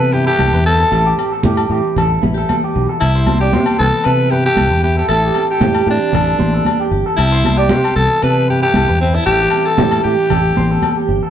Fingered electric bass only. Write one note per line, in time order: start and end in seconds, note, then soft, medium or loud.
0.00 0.28 C3 medium
0.39 0.50 C2 medium
0.53 0.83 E2 medium
0.92 1.12 A1 medium
1.45 1.65 A2 medium
1.70 1.81 A2 medium
1.96 2.17 A1 medium
2.24 2.44 A1 medium
2.76 2.86 B1 medium
3.02 3.55 C2 loud
3.54 3.64 C3 medium
3.80 3.90 C2 loud
4.06 4.47 C3 medium
4.57 4.68 C2 medium
4.70 5.01 E2 medium
5.09 5.30 A1 medium
5.60 5.81 A2 medium
5.87 5.98 A2 medium
6.13 6.34 A1 medium
6.39 6.60 A1 medium
6.91 7.02 G1 medium
7.18 7.72 C2 medium
7.70 7.81 C3 medium
7.96 8.07 C2 medium
8.23 8.64 C3 medium
8.74 8.85 C2 medium
8.88 9.18 E2 medium
9.26 9.47 A1 medium
9.80 10.00 A2 medium
10.05 10.15 A2 medium
10.31 10.51 A1 medium
10.57 10.77 A1 medium
11.09 11.19 G1 medium